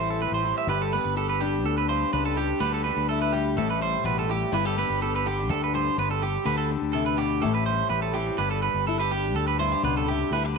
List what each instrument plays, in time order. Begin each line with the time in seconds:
Already playing: fingered electric bass A1, steel-string acoustic guitar A2 E3 G3 C4 G4
0.11 clean electric guitar A4
0.22 steel-string acoustic guitar C4, clean electric guitar B4
0.32 fingered electric bass A1, clean electric guitar C5
0.45 steel-string acoustic guitar E3 G4
0.58 clean electric guitar E5
0.67 fingered electric bass G1, steel-string acoustic guitar G2 G4, clean electric guitar B4
0.82 clean electric guitar A4
0.93 steel-string acoustic guitar B3, clean electric guitar B4
1.05 fingered electric bass G1
1.17 steel-string acoustic guitar G4, clean electric guitar A4
1.29 clean electric guitar B4
1.41 steel-string acoustic guitar D4, clean electric guitar G4
1.64 fingered electric bass D2, clean electric guitar A4
1.78 clean electric guitar B4
1.89 steel-string acoustic guitar G2 G4, clean electric guitar C5
2.13 fingered electric bass C#2, steel-string acoustic guitar D4, clean electric guitar B4
2.25 clean electric guitar A4
2.37 clean electric guitar G4, steel-string acoustic guitar G4
2.60 fingered electric bass D2, steel-string acoustic guitar D3 G3 D4 G4, clean electric guitar B4
2.74 clean electric guitar A4
2.84 steel-string acoustic guitar D4, clean electric guitar B4
2.97 fingered electric bass D2
3.09 steel-string acoustic guitar E4, clean electric guitar A4
3.22 clean electric guitar B4
3.33 steel-string acoustic guitar G3 G4, clean electric guitar G4
3.56 fingered electric bass A1, steel-string acoustic guitar A2 G4, clean electric guitar A4
3.70 clean electric guitar B4
3.82 steel-string acoustic guitar G3, clean electric guitar C5
4.04 fingered electric bass A1, steel-string acoustic guitar B2, clean electric guitar B4
4.19 clean electric guitar A4
4.28 steel-string acoustic guitar A2, clean electric guitar G4
4.52 fingered electric bass G1, steel-string acoustic guitar G2 E4, clean electric guitar B4
4.65 steel-string acoustic guitar G4, clean electric guitar A4
4.78 steel-string acoustic guitar B3, clean electric guitar B4
4.90 fingered electric bass G1
5.02 steel-string acoustic guitar G4, clean electric guitar A4
5.16 clean electric guitar B4
5.26 steel-string acoustic guitar D3, clean electric guitar G4, muted steel-string acoustic guitar stroke
5.39 steel-string acoustic guitar D4
5.49 fingered electric bass D2, clean electric guitar A4
5.64 clean electric guitar B4
5.74 steel-string acoustic guitar G2 G4, clean electric guitar C5
5.98 fingered electric bass G1, steel-string acoustic guitar B3, clean electric guitar B4
6.10 clean electric guitar A4, muted steel-string acoustic guitar stroke
6.22 clean electric guitar G4, steel-string acoustic guitar G4
6.45 fingered electric bass D2, steel-string acoustic guitar D3 G4, clean electric guitar B4
6.58 clean electric guitar A4
6.71 steel-string acoustic guitar D4
6.82 fingered electric bass D2
6.93 steel-string acoustic guitar C3, clean electric guitar A4
7.06 clean electric guitar B4
7.17 steel-string acoustic guitar B2, clean electric guitar G4
7.42 fingered electric bass A1, steel-string acoustic guitar A2 G4, clean electric guitar A4
7.55 clean electric guitar B4
7.66 steel-string acoustic guitar G3, clean electric guitar C5
7.90 fingered electric bass A1, clean electric guitar B4
8.02 clean electric guitar A4
8.14 steel-string acoustic guitar E3 C4, clean electric guitar G4
8.38 fingered electric bass G1, steel-string acoustic guitar G2 G4, clean electric guitar B4
8.51 clean electric guitar A4
8.63 clean electric guitar B4
8.74 fingered electric bass G1
8.87 steel-string acoustic guitar E4, clean electric guitar A4
8.99 steel-string acoustic guitar G4, clean electric guitar B4
9.12 steel-string acoustic guitar D4, clean electric guitar G4
9.34 fingered electric bass D2, clean electric guitar A4
9.48 clean electric guitar B4
9.59 steel-string acoustic guitar G2 E4, clean electric guitar C5
9.71 steel-string acoustic guitar G4
9.83 fingered electric bass C#2, steel-string acoustic guitar B2, clean electric guitar B4
9.97 clean electric guitar A4
10.08 steel-string acoustic guitar C3, clean electric guitar G4
10.31 fingered electric bass D2, steel-string acoustic guitar D3 E4, clean electric guitar B4
10.45 steel-string acoustic guitar G4, muted clean electric guitar stroke